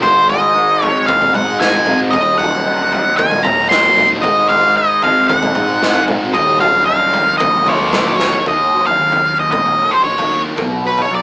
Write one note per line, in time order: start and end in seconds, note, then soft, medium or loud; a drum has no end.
0.00 0.87 G#1 medium
0.00 1.35 G#2 medium
0.00 0.54 D#4 medium
0.00 4.22 D#4 medium
0.00 0.27 C5 medium
0.00 4.22 D#5 medium
0.00 kick loud
0.00 floor tom medium
0.04 2.13 G#4 medium
0.04 2.13 C5 medium
0.28 1.33 G#3 medium
0.28 0.84 D#5 medium
0.28 floor tom medium
0.54 1.08 D#4 medium
0.82 1.87 C4 medium
0.82 1.05 C#5 medium
0.82 floor tom medium
1.06 1.35 D#2 medium
1.06 1.61 D#4 medium
1.06 1.32 F5 medium
1.06 kick loud
1.06 floor tom medium
1.22 mid tom medium
1.34 2.15 G#2 medium
1.34 2.14 G#3 medium
1.34 1.60 F#5 medium
1.34 floor tom medium
1.34 mid tom medium
1.60 2.65 D#4 medium
1.60 1.98 G#5 medium
1.60 snare medium
1.74 floor tom medium
1.86 2.14 C4 medium
1.86 mid tom medium
2.11 2.97 D#1 medium
2.11 3.46 D#2 medium
2.11 4.23 F#4 medium
2.11 4.23 A#4 medium
2.11 2.37 D#5 medium
2.11 kick loud
2.11 floor tom medium
2.38 3.44 F#3 medium
2.38 3.14 F#5 medium
2.38 floor tom medium
2.65 3.19 D#4 medium
2.92 3.97 A#3 medium
2.92 floor tom medium
3.17 3.46 A#1 medium
3.17 3.72 D#4 medium
3.17 3.46 G#5 loud
3.17 kick loud
3.17 floor tom medium
3.31 mid tom medium
3.43 4.24 D#2 medium
3.43 4.25 F#3 medium
3.43 3.69 A#5 medium
3.43 floor tom medium
3.43 mid tom medium
3.69 4.77 D#4 medium
3.69 4.07 C6 loud
3.69 snare medium
3.85 floor tom medium
3.97 4.25 A#3 medium
3.97 mid tom medium
4.22 5.08 G#1 medium
4.22 5.57 G#2 medium
4.22 8.41 D#4 medium
4.22 6.33 G#4 medium
4.22 6.33 C5 medium
4.22 4.49 D#5 medium
4.22 8.41 D#5 medium
4.22 kick loud
4.22 floor tom medium
4.49 5.55 G#3 medium
4.49 4.77 F5 medium
4.49 floor tom medium
4.77 5.30 D#4 medium
4.77 5.03 D#5 medium
5.03 6.08 C4 medium
5.03 5.28 F5 medium
5.03 floor tom medium
5.28 5.57 D#2 medium
5.28 5.82 D#4 medium
5.28 6.04 F#5 medium
5.28 kick loud
5.28 floor tom medium
5.42 mid tom medium
5.55 6.36 G#2 medium
5.55 6.35 G#3 medium
5.55 floor tom medium
5.55 mid tom medium
5.82 6.87 D#4 medium
5.82 snare medium
5.94 floor tom medium
6.08 6.35 C4 medium
6.08 mid tom medium
6.34 7.19 D#1 loud
6.34 7.67 D#2 medium
6.34 8.45 F#4 medium
6.34 8.45 A#4 medium
6.34 6.59 D#5 medium
6.34 kick loud
6.34 floor tom medium
6.60 7.65 F#3 medium
6.60 6.84 F5 medium
6.60 floor tom medium
6.86 7.39 D#4 medium
6.86 7.37 F5 medium
7.14 8.17 A#3 medium
7.14 floor tom medium
7.38 7.68 A#1 medium
7.38 7.91 D#4 medium
7.38 8.14 D#5 medium
7.38 kick loud
7.38 floor tom medium
7.66 8.30 D#2 medium
7.66 8.46 F#3 medium
7.66 8.43 C#5 medium
7.66 floor tom medium
7.93 8.46 D#4 medium
7.93 snare medium
7.93 mid tom medium
8.07 floor tom medium
8.18 8.46 A#3 medium
8.18 snare medium
8.32 floor tom medium
8.46 9.78 D#2 medium
8.46 8.88 D#2 medium
8.46 8.86 D#5 medium
8.46 kick medium
8.46 floor tom medium
8.73 9.76 F#3 medium
8.86 9.39 F5 medium
8.86 floor tom medium
8.98 9.83 D#2 medium
8.98 9.52 D#3 medium
9.12 floor tom medium
9.25 10.31 A#3 medium
9.40 9.50 D#5 medium
9.52 10.58 D#3 medium
9.52 9.93 D#5 medium
9.52 kick loud
9.52 mid tom medium
9.66 floor tom medium
9.78 10.57 F#3 medium
9.91 10.04 C5 medium
10.04 10.26 A#1 medium
10.04 10.58 D#4 medium
10.04 10.41 C#5 medium
10.18 floor tom medium
10.32 10.52 D#2 medium
10.32 10.58 A#3 medium
10.57 11.00 B1 medium
10.57 11.22 B2 medium
10.57 kick medium
10.57 floor tom medium
10.84 11.22 B3 medium
10.84 11.02 B4 medium
10.98 11.13 C#5 medium
10.98 floor tom medium
11.11 11.22 B1 medium
11.11 11.22 F#3 medium
11.15 11.22 D5 medium